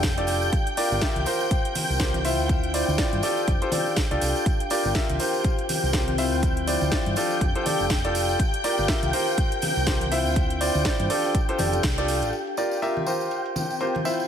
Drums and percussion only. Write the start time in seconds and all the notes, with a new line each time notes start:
0.03 kick, snare, closed hi-hat
0.18 closed hi-hat
0.27 open hi-hat, tambourine
0.42 tambourine
0.53 kick, closed hi-hat, tambourine
0.67 closed hi-hat
0.77 open hi-hat, tambourine
0.92 tambourine
1.01 kick, snare, closed hi-hat
1.15 closed hi-hat, high conga
1.26 open hi-hat, tambourine
1.40 tambourine
1.51 kick, closed hi-hat, tambourine
1.65 closed hi-hat
1.75 open hi-hat, tambourine, high conga
1.91 tambourine
2.00 kick, snare, closed hi-hat
2.14 closed hi-hat, high conga
2.25 open hi-hat, tambourine
2.39 tambourine
2.49 kick, closed hi-hat, tambourine
2.64 closed hi-hat
2.74 open hi-hat, tambourine
2.89 tambourine
2.98 kick, snare, closed hi-hat
3.13 closed hi-hat, high conga
3.23 open hi-hat, tambourine
3.37 tambourine
3.47 kick, closed hi-hat, tambourine
3.62 closed hi-hat
3.72 open hi-hat, tambourine, high conga
3.86 tambourine
3.96 kick, snare, closed hi-hat
4.11 closed hi-hat
4.21 open hi-hat, tambourine
4.36 tambourine
4.46 kick, closed hi-hat
4.60 closed hi-hat
4.70 open hi-hat, tambourine
4.85 tambourine
4.95 kick, snare, closed hi-hat
5.09 closed hi-hat, high conga
5.19 open hi-hat, tambourine
5.34 tambourine
5.44 kick, closed hi-hat, tambourine
5.59 closed hi-hat
5.69 open hi-hat, tambourine, high conga
5.84 tambourine
5.93 kick, snare, closed hi-hat
6.08 closed hi-hat, high conga
6.18 open hi-hat, tambourine
6.32 tambourine
6.42 kick, closed hi-hat, tambourine
6.57 closed hi-hat
6.67 open hi-hat, tambourine
6.81 tambourine
6.92 kick, snare, closed hi-hat
7.06 closed hi-hat, high conga
7.16 open hi-hat, tambourine
7.31 tambourine
7.41 kick, closed hi-hat, tambourine
7.55 closed hi-hat
7.66 open hi-hat, tambourine, high conga
7.80 tambourine
7.90 kick, snare, closed hi-hat
8.05 closed hi-hat
8.15 open hi-hat, tambourine
8.29 tambourine
8.39 kick, closed hi-hat, tambourine
8.54 closed hi-hat
8.64 open hi-hat, tambourine
8.78 tambourine
8.88 kick, snare, closed hi-hat
9.02 closed hi-hat, high conga
9.13 open hi-hat, tambourine
9.27 tambourine
9.37 kick, closed hi-hat, tambourine
9.52 closed hi-hat
9.62 open hi-hat, tambourine, high conga
9.76 tambourine
9.86 kick, snare, closed hi-hat, tambourine
10.01 closed hi-hat, high conga
10.12 open hi-hat, tambourine
10.26 tambourine
10.36 kick, closed hi-hat, tambourine
10.50 closed hi-hat
10.61 open hi-hat, tambourine
10.74 tambourine
10.85 kick, snare, closed hi-hat
11.00 closed hi-hat, high conga
11.10 open hi-hat, tambourine
11.24 tambourine
11.35 kick, closed hi-hat, tambourine
11.49 closed hi-hat
11.58 open hi-hat, tambourine, high conga
11.73 closed hi-hat, tambourine
11.83 kick, snare, closed hi-hat
11.98 closed hi-hat
12.08 open hi-hat, tambourine
12.22 closed hi-hat, tambourine
12.33 closed hi-hat, tambourine
12.47 closed hi-hat, tambourine
12.57 tambourine
12.71 tambourine
12.82 closed hi-hat, tambourine
12.96 closed hi-hat, tambourine, high conga
13.06 tambourine
13.21 tambourine
13.31 closed hi-hat, tambourine
13.46 closed hi-hat, tambourine
13.56 tambourine, high conga
13.70 tambourine
13.80 closed hi-hat, tambourine
13.95 closed hi-hat, tambourine, high conga
14.05 tambourine
14.20 tambourine